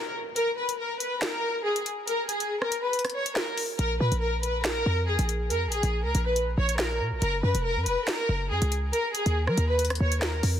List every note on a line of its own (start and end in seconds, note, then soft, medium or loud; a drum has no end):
0.00 0.12 A#4 medium
0.00 downlifter medium
0.36 0.55 A#4 loud
0.36 closed hi-hat medium
0.57 0.76 B4 medium
0.69 closed hi-hat medium
0.79 0.98 A#4 medium
1.00 1.19 B4 medium
1.00 closed hi-hat medium
1.22 1.62 A#4 medium
1.22 finger snap medium
1.22 snare loud
1.22 closed hi-hat medium
1.65 1.83 G#4 medium
1.76 closed hi-hat medium
1.86 closed hi-hat medium
2.07 2.26 A#4 medium
2.07 closed hi-hat medium
2.29 2.60 G#4 medium
2.29 closed hi-hat medium
2.40 closed hi-hat medium
2.62 2.80 A#4 medium
2.62 cross-stick medium
2.72 closed hi-hat medium
2.83 2.92 B4 medium
2.93 closed hi-hat medium
2.99 closed hi-hat medium
3.05 cross-stick loud
3.05 closed hi-hat medium
3.10 closed hi-hat medium
3.15 3.33 C#5 medium
3.26 closed hi-hat medium
3.36 3.55 A#4 medium
3.36 finger snap medium
3.36 snare loud
3.58 open hi-hat medium
3.79 4.00 A#1 loud
3.79 3.97 A#4 loud
3.79 closed hi-hat medium
4.00 4.11 A#2 loud
4.00 4.19 B4 medium
4.12 4.83 A#1 loud
4.12 closed hi-hat medium
4.22 4.40 A#4 medium
4.43 4.62 B4 medium
4.43 closed hi-hat medium
4.65 5.05 A#4 loud
4.65 finger snap medium
4.65 snare loud
4.65 closed hi-hat medium
4.86 5.18 F2 loud
5.08 5.26 G#4 medium
5.19 5.52 A#1 loud
5.19 closed hi-hat medium
5.29 closed hi-hat medium
5.50 5.68 F2 loud
5.50 5.69 A#4 medium
5.50 closed hi-hat medium
5.67 5.82 A#1 loud
5.72 6.03 G#4 medium
5.72 closed hi-hat medium
5.83 6.06 A#1 loud
5.83 closed hi-hat medium
6.04 6.14 C#2 loud
6.04 6.23 A#4 medium
6.15 6.56 A#1 loud
6.15 closed hi-hat medium
6.26 6.35 B4 medium
6.36 closed hi-hat medium
6.58 7.02 A#1 loud
6.58 6.76 C#5 medium
6.69 closed hi-hat medium
6.79 6.98 A#4 medium
6.79 finger snap medium
6.79 snare loud
7.00 7.13 A#2 loud
7.12 7.21 A#1 loud
7.22 7.42 F#1 loud
7.22 7.40 A#4 loud
7.22 closed hi-hat medium
7.43 7.54 F#2 loud
7.43 7.62 B4 medium
7.55 7.78 F1 loud
7.55 closed hi-hat medium
7.65 7.84 A#4 medium
7.76 7.88 F#2 loud
7.86 7.97 F1 loud
7.86 8.05 B4 medium
7.86 closed hi-hat medium
8.08 8.48 A#4 loud
8.08 finger snap medium
8.08 snare loud
8.08 closed hi-hat medium
8.29 8.52 F#1 loud
8.50 8.61 F#2 loud
8.50 8.69 G#4 medium
8.62 8.92 C#2 loud
8.62 closed hi-hat medium
8.72 closed hi-hat medium
8.93 9.12 A#4 medium
8.93 closed hi-hat medium
9.15 9.45 G#4 medium
9.15 closed hi-hat medium
9.26 9.49 D#2 loud
9.26 closed hi-hat medium
9.47 9.57 F#3 loud
9.47 9.66 A#4 medium
9.47 cross-stick medium
9.57 9.99 D#2 loud
9.57 closed hi-hat medium
9.69 9.78 B4 medium
9.79 closed hi-hat medium
9.85 closed hi-hat medium
9.90 cross-stick loud
9.90 closed hi-hat medium
9.95 closed hi-hat medium
10.00 10.42 D#2 loud
10.00 10.19 C#5 medium
10.12 closed hi-hat medium
10.22 10.40 A#4 medium
10.22 finger snap loud
10.22 snare loud
10.43 10.60 F2 loud
10.43 open hi-hat medium